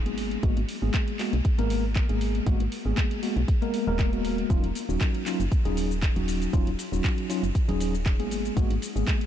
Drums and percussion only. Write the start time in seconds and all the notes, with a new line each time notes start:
0.06 closed hi-hat
0.18 open hi-hat
0.31 closed hi-hat
0.43 kick, closed hi-hat
0.57 closed hi-hat
0.69 open hi-hat
0.94 kick, clap, closed hi-hat
1.08 closed hi-hat
1.19 clap, open hi-hat
1.33 closed hi-hat
1.45 kick, closed hi-hat
1.59 closed hi-hat
1.70 open hi-hat
1.96 kick, clap, closed hi-hat
2.09 closed hi-hat
2.21 open hi-hat
2.35 closed hi-hat
2.47 kick, closed hi-hat
2.60 closed hi-hat
2.72 open hi-hat
2.97 kick, clap, closed hi-hat
3.11 closed hi-hat
3.23 open hi-hat
3.37 closed hi-hat
3.48 kick, closed hi-hat
3.62 closed hi-hat
3.74 open hi-hat
3.99 kick, clap, closed hi-hat
4.13 closed hi-hat
4.25 open hi-hat
4.38 closed hi-hat
4.50 kick, closed hi-hat, shaker
4.64 closed hi-hat
4.75 open hi-hat, shaker
4.90 shaker
5.01 kick, clap, closed hi-hat, shaker
5.15 closed hi-hat
5.26 clap, open hi-hat, shaker
5.40 closed hi-hat, shaker
5.52 kick, closed hi-hat, shaker
5.65 closed hi-hat
5.77 open hi-hat, shaker
5.91 shaker
6.02 kick, clap, closed hi-hat, shaker
6.16 closed hi-hat
6.28 open hi-hat, shaker
6.42 closed hi-hat, shaker
6.53 kick, closed hi-hat, shaker
6.67 closed hi-hat
6.79 open hi-hat, shaker
6.93 shaker
7.04 kick, clap, closed hi-hat, shaker
7.18 closed hi-hat
7.30 open hi-hat, shaker
7.43 closed hi-hat, shaker
7.55 kick, closed hi-hat, shaker
7.69 closed hi-hat
7.81 open hi-hat, shaker
7.95 shaker
8.06 kick, clap, closed hi-hat, shaker
8.20 closed hi-hat
8.31 open hi-hat, shaker
8.45 closed hi-hat, shaker
8.57 kick, closed hi-hat, shaker
8.71 closed hi-hat
8.82 open hi-hat, shaker
8.96 shaker
9.08 kick, clap, closed hi-hat, shaker
9.21 closed hi-hat